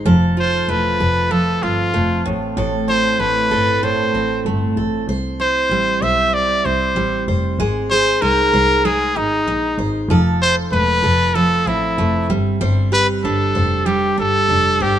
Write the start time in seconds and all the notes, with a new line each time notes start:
Already playing: G#3 D#4 G#4
0.05 F1 F3 A4
0.37 F4 C5
0.69 E1 A3 B4
1.00 F1 A4
1.31 F3 A4
1.63 G1 C4 F4
1.94 F1 A3
2.26 A1 A2
2.57 A1 A2 A4
2.88 E4 C5
3.19 A1 A3 B4
3.51 G1 A4
3.83 A2 C5
4.14 A1 C4
4.45 G1 A3
4.76 A1 A4
5.08 C2 C5
5.40 E4 C5
5.70 A1 G3
6.02 B1 C5 E5
6.34 D5
6.65 C2 C4 C5
6.96 A1 G3
7.28 F1 C5
7.59 G#1 G#3 C5
7.91 G#4 C5
8.22 C2 D#4 A#4
8.53 C2 C5
8.85 G#3 G#4
9.16 G#1 D#4
9.47 A#1 D#4
9.78 G#1 C5
10.08 F1 F3 A4
10.42 C5
10.72 E1 A3 B4
11.03 F1 A4
11.35 F3 A4
11.67 A1 C4 E4
11.98 F1 A3
12.30 G1 G3
12.61 G1 G3 C5
12.92 G4 B4
13.24 G1 D4 A4
13.55 F1 C5
13.86 G3 G4
14.17 G1 D4 A4
14.49 F1 D4
14.80 G1 G4 C5